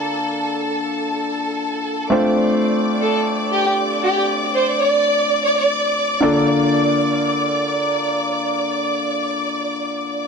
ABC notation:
X:1
M:4/4
L:1/16
Q:1/4=117
K:Bblyd
V:1 name="String section"
[Aa]16 | [dd']16- | [dd']16- | [dd']16- |
[dd']16 |]
V:2 name="Violin section"
z16 | z6 z A z3 G z3 G | z3 c z d4- d d d3 z2 | z16 |
z16 |]
V:3 name="Grand piano"
[D,B,DFAd]16 | [A,CDFc]16- | [A,CDFc]16 | [D,B,DFAd]16- |
[D,B,DFAd]16 |]